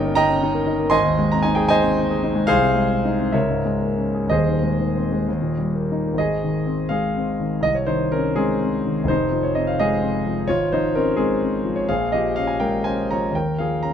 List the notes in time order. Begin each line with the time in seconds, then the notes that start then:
Already playing: G1 G2 A#3 C#4 D#4 C#5 D#5 G5
0.04 A#4
0.15 D#4 D#5 G5 A#5
0.30 C#4
0.43 D#4
0.54 A#4
0.66 D#4
0.79 A#3
0.90 G#1 D#5 G#5 C6
1.05 D#2
1.18 G#3
1.32 C4 A#5
1.43 D#4 G#5
1.55 G#4 G5
1.69 D#4 C5 D#5 G#5
1.82 C4
1.97 D#4
2.10 G#4
2.23 D#4
2.35 G#3
2.47 C2 G#4 C5 F5
2.62 C3
2.75 G#3
2.90 C4
3.05 D#4
3.19 C4
3.32 C#2 A#4 C#5 E5
3.50 G#2
3.65 G#3
3.81 A#3
3.97 C#4
4.15 G#4
4.27 D#1 D#2 D#5
4.31 G#4 C5
4.48 D#3
4.63 G#3
4.81 D#3
4.97 C4
5.12 G#3
5.28 D#2
5.42 A#2
5.58 G3
5.75 A#3
5.92 D#4
6.06 A#3
6.14 G#1
6.18 G#4 D#5
6.44 D#3
6.66 C4
6.89 G#3 G#4 F5
7.17 C4
7.40 D#3
7.60 C2 D#5
7.75 C#5
7.86 D#3 D#4 C5
8.12 C4 C#4 A#4
8.36 G#3 C4 G#4
8.62 C4
8.86 D#3
9.04 F1
9.08 D#4 C5
9.32 F3
9.43 C#5
9.55 C4 D#5
9.67 F5
9.80 G#3 G#4 D#5
10.02 C4
10.27 F3
10.48 G#1 F4 C#5
10.72 F3 D#4 C5
10.95 C4 C#4 A#4
11.17 G#3 C4 G#4
11.43 C4
11.65 F3
11.76 C#5
11.89 A#1 G#4 F5
12.12 F3 G4 D#5
12.36 C#4 F5
12.47 G#5
12.60 G#3 A#4 G5
12.84 C#4 C5 G#5
13.11 F3 C#5 A#5
13.30 D#2
13.35 A#4 G5
13.58 F3 G#4 F5
13.83 C#4 A#5